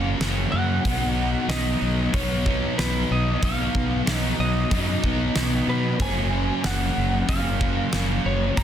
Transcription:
0.00 0.14 F#1 medium
0.00 0.20 F#2 medium
0.00 0.20 C#3 medium
0.00 0.21 F#3 medium
0.00 0.21 A#3 medium
0.00 0.21 C#4 medium
0.00 0.15 F5 medium
0.20 0.45 F#1 medium
0.20 0.83 C#3 medium
0.20 0.85 F#3 medium
0.20 0.84 A#3 medium
0.20 0.84 C#4 medium
0.20 snare loud
0.20 open hi-hat soft
0.52 0.78 F#2 medium
0.52 1.49 F#5 medium
0.85 1.35 B1 medium
0.85 1.48 B2 medium
0.85 1.49 F#3 medium
0.85 1.50 B3 medium
0.85 1.50 D#4 medium
0.85 kick loud
0.85 open hi-hat soft
1.48 1.74 B1 medium
1.48 2.11 B2 medium
1.48 2.13 F#3 medium
1.48 2.12 B3 medium
1.48 2.13 D#4 medium
1.48 2.16 D#5 medium
1.48 snare loud
1.48 open hi-hat medium
1.82 2.07 B1 medium
2.13 2.64 B1 medium
2.13 2.77 B2 medium
2.13 2.48 F#3 medium
2.13 2.45 B3 medium
2.13 2.44 D#4 medium
2.13 2.78 C#5 medium
2.13 kick loud
2.13 open hi-hat soft
2.46 2.79 F#3 medium
2.46 2.79 B3 medium
2.46 2.79 D#4 medium
2.46 kick medium
2.78 3.03 B1 medium
2.78 3.41 B2 medium
2.78 3.43 F#3 medium
2.78 3.43 B3 medium
2.78 3.44 D#4 medium
2.78 3.11 B4 medium
2.78 snare loud
2.78 open hi-hat medium
3.11 3.36 B1 medium
3.11 3.44 D#5 medium
3.42 3.67 B1 medium
3.42 4.05 B2 medium
3.42 4.07 F#3 medium
3.42 4.07 B3 medium
3.42 4.07 D#4 medium
3.42 4.13 F5 medium
3.42 kick loud
3.42 open hi-hat medium
3.75 4.00 B1 medium
3.75 kick medium
4.06 4.32 B1 medium
4.06 4.69 B2 medium
4.06 4.70 F#3 medium
4.06 4.71 B3 medium
4.06 4.71 D#4 medium
4.06 snare loud
4.06 open hi-hat medium
4.13 4.40 D#5 medium
4.39 4.64 B1 medium
4.39 5.72 D#5 medium
4.70 4.96 F#2 medium
4.70 5.34 B2 medium
4.70 5.04 F#3 medium
4.70 5.02 B3 medium
4.70 5.01 D#4 loud
4.70 kick loud
4.70 open hi-hat soft
5.02 5.29 B1 medium
5.02 5.35 F#3 medium
5.02 5.35 B3 medium
5.02 5.35 D#4 medium
5.02 kick medium
5.35 5.61 B1 medium
5.35 5.98 B2 medium
5.35 6.01 F#3 medium
5.35 5.98 B3 medium
5.35 5.98 D#4 medium
5.35 snare loud
5.35 open hi-hat soft
5.67 5.92 B2 medium
5.67 6.02 B4 medium
6.00 6.50 F#1 medium
6.00 7.27 F#2 medium
6.00 6.62 C#3 medium
6.00 6.64 F#3 medium
6.00 6.65 A#3 medium
6.00 6.65 C#4 medium
6.00 6.67 G#5 loud
6.00 kick loud
6.00 open hi-hat soft
6.64 6.89 F#1 medium
6.64 7.27 C#3 medium
6.64 7.28 F#3 medium
6.64 7.28 A#3 medium
6.64 7.29 C#4 medium
6.64 7.28 F#5 medium
6.64 snare loud
6.64 open hi-hat medium
6.97 7.22 F#1 medium
7.27 7.79 F#1 medium
7.27 7.92 F#2 medium
7.27 7.92 C#3 medium
7.27 7.61 F#3 medium
7.27 7.60 A#3 medium
7.27 7.60 C#4 medium
7.27 8.21 F5 medium
7.27 kick medium
7.27 open hi-hat soft
7.60 7.92 F#3 medium
7.60 7.93 A#3 medium
7.60 7.94 C#4 medium
7.60 kick medium
7.93 8.18 F#1 medium
7.93 8.56 C#3 medium
7.93 8.57 F#3 medium
7.93 8.58 A#3 medium
7.93 8.58 C#4 medium
7.93 snare loud
7.93 open hi-hat medium
8.25 8.50 F#1 medium
8.25 8.59 C#5 medium
8.57 8.63 F#1 medium
8.57 8.63 F#2 medium
8.57 8.63 C#3 medium
8.57 8.63 F#3 medium
8.57 8.63 A#3 medium
8.57 8.63 C#4 medium
8.57 8.63 A#5 loud
8.57 kick loud
8.57 open hi-hat medium

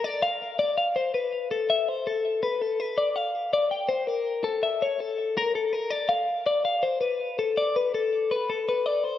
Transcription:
0.04 0.23 D5 medium
0.23 0.59 F5 loud
0.59 0.77 D5 medium
0.78 0.96 F5 medium
0.96 1.14 C5 medium
1.14 1.51 B4 medium
1.51 1.70 A4 medium
1.70 1.89 E5 loud
1.89 2.07 C5 medium
2.07 2.42 A4 medium
2.43 2.62 B4 medium
2.62 2.80 A4 medium
2.80 2.98 B4 medium
2.98 3.16 D5 medium
3.16 3.53 F5 medium
3.53 3.71 D5 medium
3.71 3.90 G5 medium
3.89 4.07 C5 medium
4.07 4.45 A#4 medium
4.44 4.63 A4 medium
4.63 4.82 E5 medium
4.82 5.00 C#5 medium
5.00 5.37 A4 medium
5.37 5.55 A#4 loud
5.55 5.73 A4 medium
5.73 5.91 A#4 medium
5.91 6.10 D5 medium
6.09 6.46 F5 medium
6.47 6.64 D5 medium
6.65 6.83 F5 medium
6.83 7.00 C5 medium
7.01 7.38 B4 medium
7.39 7.57 A4 medium
7.57 7.76 D5 loud
7.76 7.94 B4 medium
7.94 8.31 A4 medium
8.31 8.49 B4 medium
8.50 8.68 A4 medium
8.69 8.86 B4 medium
8.86 9.04 D5 medium
9.04 9.18 C5 medium

